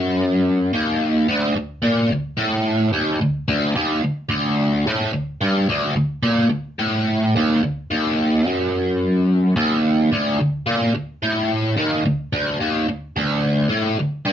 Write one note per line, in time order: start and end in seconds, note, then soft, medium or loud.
0.00 0.73 F#2 loud
0.73 1.27 D#2 medium
1.28 1.54 D2 medium
1.55 1.78 D2 medium
1.82 2.09 A#2 loud
2.11 2.33 D2 medium
2.37 2.92 A2 loud
2.93 3.20 D#2 medium
3.21 3.43 D2 medium
3.48 3.75 D2 loud
3.76 4.03 D#2 medium
4.04 4.26 D2 medium
4.29 4.85 D2 medium
4.87 5.13 A2 loud
5.13 5.36 D2 medium
5.41 5.68 G2 loud
5.69 5.95 D2 loud
5.96 6.19 D2 medium
6.23 6.49 A#2 loud
6.50 6.73 D2 medium
6.79 7.34 A2 loud
7.36 7.63 D#2 loud
7.63 7.85 D2 medium
7.91 8.46 D#2 loud
8.46 9.56 F#2 loud
9.56 10.11 D#2 medium
10.12 10.38 D2 loud
10.40 10.62 D2 medium
10.66 10.94 A#2 loud
10.95 11.17 D2 medium
11.22 11.77 A2 loud
11.77 12.04 D#2 medium
12.06 12.28 D2 medium
12.33 12.60 D2 loud
12.60 12.87 D#2 loud
12.89 13.11 D2 medium
13.16 13.70 D2 loud
13.70 13.97 A2 loud
14.00 14.22 D2 medium
14.26 14.33 G2 loud